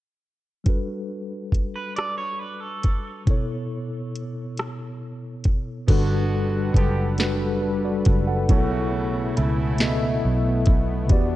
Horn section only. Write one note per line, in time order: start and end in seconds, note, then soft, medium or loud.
5.88 6.71 D3 medium
5.88 6.71 B3 medium
5.88 6.71 F#4 medium
6.75 7.10 D3 medium
6.75 7.10 B3 medium
6.75 7.10 G4 medium
8.49 9.32 C#3 medium
8.49 9.32 A3 medium
8.49 9.32 F#4 loud
9.36 10.63 C#3 medium
9.36 10.62 A3 medium
9.36 10.63 E4 medium